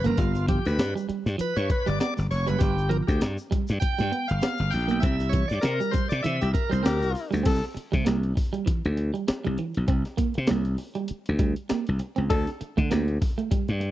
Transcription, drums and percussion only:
0.04 closed hi-hat medium
0.04 shaker medium
0.17 kick loud
0.17 closed hi-hat medium
0.17 shaker medium
0.35 shaker medium
0.48 kick medium
0.48 closed hi-hat medium
0.65 closed hi-hat medium
0.65 shaker medium
0.79 snare loud
0.79 closed hi-hat medium
0.79 shaker medium
0.97 shaker medium
1.09 closed hi-hat medium
1.26 closed hi-hat soft
1.26 shaker medium
1.39 closed hi-hat medium
1.39 shaker medium
1.56 shaker medium
1.70 kick medium
1.70 closed hi-hat medium
1.87 closed hi-hat medium
1.87 shaker medium
2.00 snare loud
2.00 closed hi-hat medium
2.00 shaker medium
2.17 snare soft
2.17 shaker medium
2.31 open hi-hat medium
2.31 shaker medium
2.47 closed hi-hat medium
2.47 shaker medium
2.60 kick loud
2.60 closed hi-hat medium
2.60 shaker medium
2.78 shaker medium
2.91 closed hi-hat medium
3.08 kick medium
3.08 closed hi-hat soft
3.08 shaker medium
3.21 snare loud
3.21 closed hi-hat medium
3.21 shaker medium
3.38 shaker medium
3.52 kick medium
3.52 closed hi-hat medium
3.67 closed hi-hat medium
3.67 shaker medium
3.81 kick loud
3.81 closed hi-hat medium
3.81 shaker medium
3.98 shaker medium
4.13 closed hi-hat medium
4.29 closed hi-hat medium
4.29 shaker medium
4.42 snare loud
4.42 closed hi-hat medium
4.42 shaker medium
4.58 snare soft
4.58 shaker medium
4.72 open hi-hat medium
4.72 shaker medium
4.89 closed hi-hat soft
4.89 shaker medium
5.02 kick loud
5.02 closed hi-hat medium
5.02 shaker medium
5.20 snare soft
5.20 closed hi-hat soft
5.20 shaker medium
5.33 kick medium
5.33 closed hi-hat medium
5.33 shaker medium
5.50 closed hi-hat soft
5.50 shaker medium
5.62 snare loud
5.62 closed hi-hat medium
5.62 shaker medium
5.80 shaker medium
5.93 kick medium
5.93 closed hi-hat medium
5.93 shaker medium
6.11 closed hi-hat medium
6.11 shaker medium
6.24 closed hi-hat loud
6.24 shaker medium
6.41 closed hi-hat soft
6.41 shaker medium
6.55 kick medium
6.55 closed hi-hat medium
6.55 shaker soft
6.72 closed hi-hat medium
6.72 shaker medium
6.85 snare loud
6.85 closed hi-hat medium
6.85 shaker medium
7.02 snare soft
7.02 closed hi-hat soft
7.02 shaker medium
7.15 open hi-hat medium
7.15 shaker medium
7.32 closed hi-hat medium
7.32 shaker medium
7.45 kick loud
7.45 closed hi-hat medium
7.45 crash medium
7.63 snare soft
7.63 closed hi-hat soft
7.77 closed hi-hat medium
7.93 kick medium
7.93 closed hi-hat medium
8.06 snare loud
8.06 closed hi-hat medium
8.23 closed hi-hat soft
8.37 kick medium
8.37 open hi-hat medium
8.54 closed hi-hat medium
8.67 kick loud
8.67 closed hi-hat loud
8.85 closed hi-hat soft
8.97 closed hi-hat medium
9.15 closed hi-hat medium
9.28 snare loud
9.28 closed hi-hat loud
9.45 closed hi-hat soft
9.58 closed hi-hat medium
9.74 closed hi-hat soft
9.88 kick loud
9.88 closed hi-hat medium
10.05 snare soft
10.05 closed hi-hat soft
10.18 kick medium
10.18 closed hi-hat loud
10.34 closed hi-hat soft
10.47 snare loud
10.47 closed hi-hat medium
10.65 closed hi-hat soft
10.78 open hi-hat medium
10.95 closed hi-hat medium
11.08 closed hi-hat medium
11.26 closed hi-hat soft
11.39 kick medium
11.39 closed hi-hat medium
11.56 closed hi-hat medium
11.69 snare loud
11.69 closed hi-hat medium
11.87 closed hi-hat soft
11.99 closed hi-hat medium
12.16 closed hi-hat medium
12.30 kick loud
12.30 closed hi-hat medium
12.47 snare soft
12.47 closed hi-hat soft
12.61 closed hi-hat medium
12.78 kick medium
12.78 closed hi-hat soft
12.91 snare loud
12.91 closed hi-hat medium
13.08 closed hi-hat soft
13.22 kick loud
13.22 open hi-hat medium
13.39 closed hi-hat medium
13.51 kick loud
13.51 closed hi-hat loud
13.68 closed hi-hat soft
13.81 closed hi-hat medium

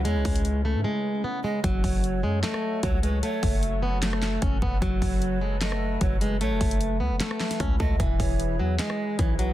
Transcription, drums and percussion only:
0.05 closed hi-hat medium
0.25 kick loud
0.25 closed hi-hat soft
0.25 open hi-hat medium
0.36 closed hi-hat medium
0.45 closed hi-hat medium
1.64 kick loud
1.64 closed hi-hat medium
1.84 kick loud
1.84 open hi-hat medium
2.04 closed hi-hat medium
2.43 snare loud
2.43 clap medium
2.43 closed hi-hat medium
2.54 cross-stick loud
2.83 kick loud
2.83 closed hi-hat medium
3.03 closed hi-hat medium
3.23 closed hi-hat medium
3.43 kick loud
3.43 open hi-hat medium
3.63 closed hi-hat medium
4.02 snare loud
4.02 clap medium
4.02 closed hi-hat medium
4.13 cross-stick loud
4.22 snare loud
4.22 clap medium
4.22 closed hi-hat medium
4.42 kick loud
4.42 closed hi-hat medium
4.62 kick loud
4.82 kick loud
4.82 closed hi-hat medium
5.02 kick loud
5.02 open hi-hat medium
5.22 closed hi-hat medium
5.61 snare loud
5.61 clap medium
5.61 closed hi-hat medium
5.72 cross-stick loud
6.01 kick loud
6.01 closed hi-hat medium
6.21 closed hi-hat medium
6.41 closed hi-hat medium
6.61 kick loud
6.61 closed hi-hat soft
6.61 open hi-hat medium
6.71 closed hi-hat medium
6.81 closed hi-hat medium
7.20 snare loud
7.20 clap medium
7.20 closed hi-hat medium
7.31 cross-stick loud
7.40 snare loud
7.40 clap medium
7.40 closed hi-hat soft
7.51 snare medium
7.51 closed hi-hat medium
7.60 kick medium
7.60 cross-stick medium
7.60 closed hi-hat medium
7.80 kick loud
8.00 kick loud
8.00 closed hi-hat medium
8.20 kick loud
8.20 open hi-hat medium
8.40 closed hi-hat medium
8.79 snare loud
8.79 clap medium
8.79 closed hi-hat medium
8.90 cross-stick loud
9.19 kick loud
9.19 closed hi-hat medium
9.39 closed hi-hat medium

